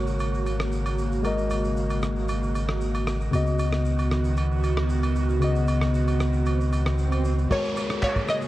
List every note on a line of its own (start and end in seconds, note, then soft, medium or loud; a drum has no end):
0.00 3.29 G#1 medium
0.00 3.29 C#3 medium
0.00 1.20 G#3 medium
0.00 3.29 A#3 medium
0.00 1.20 F#4 medium
0.00 3.29 F#4 medium
0.00 1.21 A#4 medium
0.00 1.22 C#5 medium
0.07 shaker soft
0.20 high agogo medium
0.20 shaker medium
0.34 shaker soft
0.46 high agogo medium
0.46 shaker medium
0.60 cross-stick medium
0.60 shaker soft
0.72 shaker medium
0.86 high agogo medium
0.86 shaker medium
0.98 shaker medium
1.12 shaker soft
1.22 3.28 G#3 medium
1.22 3.29 F#4 medium
1.22 3.30 A#4 medium
1.22 high agogo medium
1.22 shaker medium
1.27 3.30 D#5 medium
1.38 shaker medium
1.50 high agogo medium
1.50 shaker medium
1.64 shaker soft
1.77 shaker medium
1.90 high agogo medium
1.90 shaker medium
2.03 cross-stick medium
2.03 shaker medium
2.16 shaker medium
2.28 high agogo medium
2.28 shaker medium
2.43 shaker soft
2.55 high agogo medium
2.55 shaker medium
2.69 cross-stick medium
2.81 shaker medium
2.95 high agogo medium
2.95 shaker medium
3.07 cross-stick medium
3.07 shaker medium
3.21 shaker soft
3.31 7.47 C#2 medium
3.31 5.37 C#3 medium
3.31 7.47 D#3 medium
3.31 5.38 B3 medium
3.31 7.47 B3 medium
3.31 7.47 F#4 medium
3.31 5.38 F#4 medium
3.31 swell medium
3.31 high agogo medium
3.31 shaker medium
3.36 5.39 D#5 medium
3.47 shaker medium
3.59 high agogo medium
3.59 shaker medium
3.73 cross-stick medium
3.73 shaker soft
3.86 shaker medium
3.99 high agogo medium
3.99 shaker soft
4.11 cross-stick medium
4.11 shaker medium
4.24 shaker medium
4.37 high agogo medium
4.37 shaker medium
4.52 shaker soft
4.64 high agogo medium
4.64 shaker medium
4.77 cross-stick loud
4.89 shaker medium
5.03 high agogo medium
5.03 shaker medium
5.16 shaker medium
5.30 shaker soft
5.40 7.46 C#3 medium
5.40 7.46 B3 medium
5.40 7.47 F#4 medium
5.40 high agogo medium
5.40 shaker medium
5.44 7.48 D#5 medium
5.56 shaker medium
5.68 high agogo medium
5.68 shaker medium
5.81 cross-stick medium
5.81 shaker soft
5.94 shaker medium
6.07 high agogo medium
6.07 shaker soft
6.20 cross-stick medium
6.20 shaker medium
6.33 shaker medium
6.46 high agogo medium
6.46 shaker medium
6.61 shaker soft
6.72 high agogo medium
6.72 shaker medium
6.86 cross-stick medium
6.86 shaker medium
6.98 shaker medium
7.12 high agogo medium
7.12 shaker medium
7.25 shaker medium
7.38 shaker soft
7.50 8.48 C#3 medium
7.50 8.34 G#3 medium
7.50 8.48 A#3 medium
7.50 8.34 F#4 medium
7.50 8.48 F#4 medium
7.50 8.48 G#4 medium
7.50 8.35 A#4 medium
7.50 8.35 C#5 medium
7.50 8.00 C#5 loud
7.50 kick loud
7.50 crash loud
7.50 downlifter medium
7.50 high agogo medium
7.64 shaker medium
7.76 high agogo medium
7.76 shaker loud
7.90 cross-stick medium
7.90 shaker medium
8.03 8.30 C#5 loud
8.03 kick medium
8.03 clap medium
8.03 low woodblock medium
8.03 shaker medium
8.16 kick medium
8.16 high agogo medium
8.16 shaker medium
8.29 8.48 D#5 loud
8.29 cross-stick medium
8.29 shaker medium
8.42 shaker medium